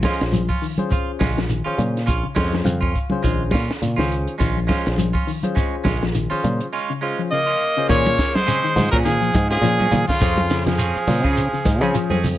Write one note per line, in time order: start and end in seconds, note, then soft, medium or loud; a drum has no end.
0.00 0.14 F3 medium
0.00 0.23 G#3 medium
0.00 high conga loud
0.00 shekere soft
0.04 0.23 C#4 medium
0.04 0.41 C#4 medium
0.04 0.24 F4 medium
0.04 0.41 F4 medium
0.04 0.41 G#4 medium
0.04 0.41 C5 medium
0.04 kick medium
0.04 snare medium
0.04 closed hi-hat medium
0.21 0.48 A#1 medium
0.21 snare medium
0.21 closed hi-hat medium
0.32 0.57 F3 medium
0.32 closed hi-hat medium
0.32 high conga medium
0.32 shekere medium
0.49 0.66 C#4 soft
0.49 0.66 F4 medium
0.49 kick medium
0.62 0.86 D#3 medium
0.62 open hi-hat medium
0.62 shekere soft
0.78 1.20 C#4 medium
0.78 1.20 F4 medium
0.78 1.20 G#4 medium
0.78 1.20 C5 medium
0.78 closed hi-hat soft
0.78 high conga medium
0.90 1.11 F4 medium
0.90 muted clean electric guitar stroke medium
0.90 kick medium
0.90 closed hi-hat medium
0.90 high conga soft
0.90 shekere medium
1.19 1.63 A#1 medium
1.19 1.34 C#3 medium
1.19 1.39 G#3 medium
1.19 1.39 C#4 medium
1.19 1.39 F4 medium
1.19 kick medium
1.19 snare medium
1.19 closed hi-hat medium
1.19 high conga medium
1.19 shekere soft
1.37 1.48 F3 medium
1.37 snare medium
1.49 1.73 D#3 medium
1.49 closed hi-hat medium
1.49 high conga soft
1.49 shekere medium
1.64 1.82 C#4 soft
1.64 2.01 C#4 medium
1.64 1.82 F4 medium
1.64 2.01 F4 medium
1.64 2.01 G#4 medium
1.64 2.01 C5 medium
1.64 muted fingered electric bass stroke soft
1.78 2.10 A#2 loud
1.78 2.02 C#3 medium
1.78 closed hi-hat soft
1.78 high conga medium
1.78 shekere soft
1.97 snare soft
1.97 closed hi-hat soft
2.06 2.23 A#1 medium
2.06 2.26 C#4 medium
2.06 2.27 F4 medium
2.06 muted clean electric guitar stroke medium
2.06 kick medium
2.06 closed hi-hat medium
2.06 high conga soft
2.06 shekere medium
2.24 2.48 C#3 medium
2.35 2.64 F2 medium
2.35 2.55 G#3 medium
2.35 2.55 C#4 medium
2.35 2.73 C#4 medium
2.35 2.56 F4 medium
2.35 2.74 F4 medium
2.35 2.73 G#4 medium
2.35 2.73 C5 medium
2.35 2.64 C#5 medium
2.35 kick medium
2.35 snare medium
2.35 closed hi-hat medium
2.35 high conga medium
2.35 shekere soft
2.53 2.64 F3 medium
2.53 snare medium
2.64 2.93 F2 loud
2.64 2.89 C#3 medium
2.64 3.20 F5 medium
2.64 closed hi-hat medium
2.64 high conga medium
2.64 shekere medium
2.81 2.99 C#4 medium
2.81 2.98 F4 medium
2.81 kick medium
2.96 kick medium
2.96 closed hi-hat soft
2.96 shekere soft
3.10 3.22 C#3 medium
3.10 3.53 C#4 medium
3.10 3.53 F4 medium
3.10 3.53 G#4 medium
3.10 3.53 C5 medium
3.10 high conga medium
3.23 3.52 A#1 medium
3.23 3.48 D#3 medium
3.23 3.42 G#3 medium
3.23 3.43 F4 medium
3.23 muted clean electric guitar stroke medium
3.23 kick medium
3.23 closed hi-hat medium
3.23 high conga soft
3.23 shekere medium
3.51 3.69 A#2 medium
3.51 3.72 C#4 medium
3.51 3.72 F4 medium
3.51 muted clean electric guitar stroke soft
3.51 kick medium
3.51 closed hi-hat soft
3.51 high conga medium
3.51 shekere soft
3.55 snare medium
3.71 snare medium
3.82 3.97 A#2 medium
3.82 3.96 C#3 medium
3.82 closed hi-hat medium
3.82 high conga soft
3.82 shekere medium
3.96 4.26 C#2 medium
3.96 4.22 D#3 medium
3.96 4.14 C#4 soft
3.96 4.34 C#4 medium
3.96 4.14 F4 medium
3.96 4.34 F4 medium
3.96 4.34 G#4 medium
3.96 4.34 C5 loud
3.96 snare medium
4.12 closed hi-hat soft
4.12 shekere soft
4.27 closed hi-hat soft
4.38 4.68 A#1 loud
4.38 4.54 D#3 medium
4.38 4.58 G#3 medium
4.38 4.59 C#4 medium
4.38 4.59 F4 medium
4.38 kick medium
4.38 snare soft
4.38 closed hi-hat medium
4.38 high conga soft
4.38 shekere medium
4.57 4.80 F3 medium
4.67 4.87 G#3 medium
4.67 4.88 C#4 medium
4.67 5.07 C#4 medium
4.67 4.88 F4 medium
4.67 5.07 F4 medium
4.67 5.07 G#4 medium
4.67 5.07 C5 medium
4.67 kick medium
4.67 snare medium
4.67 closed hi-hat medium
4.67 high conga loud
4.67 shekere soft
4.86 5.14 A#1 medium
4.86 snare medium
4.86 closed hi-hat medium
4.98 5.22 F3 medium
4.98 closed hi-hat medium
4.98 high conga medium
4.98 shekere medium
5.13 5.31 C#4 medium
5.13 5.31 F4 medium
5.13 kick medium
5.27 5.51 D#3 medium
5.27 open hi-hat medium
5.27 shekere soft
5.43 5.85 C#4 medium
5.43 5.85 F4 medium
5.43 5.85 G#4 medium
5.43 5.85 C5 medium
5.43 closed hi-hat soft
5.43 high conga medium
5.55 5.75 G#3 medium
5.55 5.75 C#4 medium
5.55 muted clean electric guitar stroke medium
5.55 kick medium
5.55 snare soft
5.55 closed hi-hat medium
5.55 high conga soft
5.55 shekere medium
5.84 6.28 A#1 medium
5.84 5.99 C#3 medium
5.84 6.04 G#3 medium
5.84 6.04 C#4 medium
5.84 6.04 F4 medium
5.84 kick medium
5.84 snare medium
5.84 closed hi-hat medium
5.84 high conga loud
5.84 shekere soft
6.02 6.13 F3 medium
6.02 snare medium
6.15 6.39 D#3 medium
6.15 closed hi-hat medium
6.15 high conga soft
6.15 shekere medium
6.30 6.66 C#4 medium
6.30 6.47 C#4 soft
6.30 6.47 F4 medium
6.30 6.66 F4 medium
6.30 6.66 G#4 medium
6.30 6.66 C5 loud
6.30 muted fingered electric bass stroke soft
6.43 6.59 A#2 medium
6.43 6.68 C#3 medium
6.43 closed hi-hat soft
6.43 high conga medium
6.43 shekere soft
6.61 closed hi-hat medium
6.73 6.92 G#3 medium
6.73 6.92 C#4 medium
6.73 6.92 F4 medium
6.90 7.13 C#3 medium
7.01 7.21 G#3 medium
7.01 7.21 C#4 medium
7.01 7.39 C#4 medium
7.01 7.21 F4 medium
7.01 7.39 F4 medium
7.01 7.39 G#4 medium
7.01 7.39 C5 medium
7.19 7.29 F3 medium
7.31 7.55 C#3 medium
7.31 7.86 A#3 medium
7.31 7.85 D#5 loud
7.46 7.64 C#4 soft
7.46 7.63 F4 medium
7.77 7.87 C#3 medium
7.77 7.88 C#4 medium
7.77 7.89 F4 medium
7.77 7.89 G#4 medium
7.77 7.90 C5 medium
7.88 8.16 A#2 loud
7.88 8.13 D#3 loud
7.88 8.08 F3 soft
7.88 8.37 A#3 medium
7.88 8.08 C4 medium
7.88 8.08 C#4 medium
7.88 8.34 C#4 medium
7.88 8.34 F4 medium
7.88 8.08 G#4 medium
7.88 8.34 G#4 medium
7.88 8.36 C#5 loud
7.88 8.34 C#5 medium
7.88 kick medium
7.88 closed hi-hat medium
7.88 shekere medium
8.06 high conga medium
8.06 shekere soft
8.18 kick medium
8.18 snare medium
8.18 closed hi-hat medium
8.18 shekere medium
8.35 8.92 G#3 medium
8.35 8.91 C5 medium
8.35 snare medium
8.35 high conga medium
8.35 shekere soft
8.46 8.61 C#3 medium
8.46 8.66 F3 medium
8.46 8.66 C4 medium
8.46 8.66 C#4 medium
8.46 8.66 G#4 medium
8.46 closed hi-hat medium
8.46 shekere medium
8.64 8.87 D#3 medium
8.64 shekere soft
8.76 8.91 G#2 loud
8.76 9.13 C#4 medium
8.76 9.13 F4 medium
8.76 9.13 G#4 medium
8.76 9.13 C5 medium
8.76 snare soft
8.76 open hi-hat medium
8.76 high conga medium
8.76 low conga medium
8.76 shekere medium
8.91 9.32 A#2 medium
8.91 8.99 F#3 medium
8.91 9.09 C4 soft
8.91 9.09 C#4 medium
8.91 9.09 G#4 medium
8.91 8.98 A#4 medium
8.91 kick medium
8.91 closed hi-hat medium
8.91 shekere soft
9.05 9.19 D#3 medium
9.05 9.47 F3 medium
9.05 9.47 G#4 medium
9.05 snare soft
9.05 closed hi-hat medium
9.05 shekere medium
9.21 9.45 F3 medium
9.21 shekere soft
9.33 9.61 G#2 medium
9.33 kick medium
9.33 closed hi-hat medium
9.33 high conga loud
9.33 shekere medium
9.50 10.05 F3 medium
9.50 9.67 C4 soft
9.50 9.85 C#4 medium
9.50 9.67 C#4 soft
9.50 9.85 F4 medium
9.50 9.67 G#4 soft
9.50 9.85 G#4 medium
9.50 10.05 G#4 medium
9.50 9.86 C5 medium
9.50 snare soft
9.50 shekere soft
9.62 9.89 A#2 loud
9.62 9.87 F3 medium
9.62 snare soft
9.62 closed hi-hat medium
9.62 shekere medium
9.79 9.96 C4 soft
9.79 9.96 C#4 medium
9.79 9.96 G#4 medium
9.79 high conga medium
9.79 shekere soft
9.91 10.07 A#2 loud
9.91 10.16 D#3 medium
9.91 closed hi-hat soft
9.91 high conga medium
9.91 low conga medium
9.91 shekere medium
10.08 10.63 C#3 medium
10.08 10.62 F4 medium
10.08 muted fingered electric bass stroke soft
10.08 kick medium
10.08 snare medium
10.08 shekere soft
10.20 10.92 F2 medium
10.20 10.40 F3 medium
10.20 10.40 C4 medium
10.20 10.40 C#4 medium
10.20 10.66 C#4 medium
10.20 10.66 F4 medium
10.20 10.66 G#4 medium
10.20 10.40 G#4 medium
10.20 10.66 C5 medium
10.20 kick medium
10.20 closed hi-hat medium
10.20 shekere medium
10.37 high conga loud
10.37 shekere soft
10.50 10.63 C#3 medium
10.50 snare medium
10.50 closed hi-hat medium
10.50 shekere medium
10.66 10.77 F3 medium
10.66 12.21 F3 medium
10.66 12.20 G#4 medium
10.66 snare medium
10.66 closed hi-hat medium
10.66 low conga medium
10.66 shekere soft
10.78 10.97 F3 medium
10.78 10.98 C4 medium
10.78 10.98 C#4 medium
10.78 10.98 G#4 medium
10.78 closed hi-hat medium
10.78 shekere medium
10.95 muted fingered electric bass stroke soft
10.95 shekere soft
11.08 11.24 A#2 loud
11.08 11.32 C#3 medium
11.08 11.45 C#4 medium
11.08 11.45 F4 medium
11.08 11.45 G#4 medium
11.08 11.45 C5 medium
11.08 snare soft
11.08 open hi-hat medium
11.08 high conga medium
11.08 low conga medium
11.08 shekere medium
11.24 11.51 C#3 loud
11.24 11.41 C4 soft
11.24 11.41 C#4 soft
11.24 11.40 G#4 medium
11.24 kick medium
11.24 closed hi-hat medium
11.24 shekere soft
11.37 closed hi-hat medium
11.37 shekere medium
11.52 11.77 C#3 medium
11.52 muted fingered electric bass stroke soft
11.52 shekere soft
11.65 11.81 G#2 medium
11.65 kick medium
11.65 snare soft
11.65 closed hi-hat medium
11.65 high conga loud
11.65 shekere medium
11.81 11.94 C#3 medium
11.81 11.93 F3 medium
11.81 11.99 C4 soft
11.81 11.98 C#4 medium
11.81 12.18 C#4 medium
11.81 12.17 F4 medium
11.81 11.98 G#4 medium
11.81 12.17 G#4 medium
11.81 12.17 C5 loud
11.81 shekere soft
11.95 12.18 F3 medium
11.95 closed hi-hat medium
11.95 shekere medium
12.10 12.38 F2 medium
12.10 12.27 C4 medium
12.10 12.27 C#4 medium
12.10 12.27 G#4 medium
12.10 high conga medium
12.10 shekere soft
12.24 open hi-hat medium
12.24 high conga medium
12.24 low conga medium
12.24 shekere medium